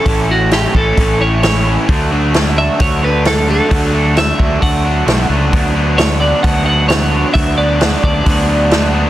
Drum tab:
HH |o-o-o-o-|o-o-o-o-|o-o-o-o-|o-o-o-o-|
SD |--o---o-|--o---o-|--o---o-|--o---o-|
BD |o--oo---|o---o---|o--oo---|o---o---|

HH |o-o-o-o-|
SD |--o---o-|
BD |o--oo---|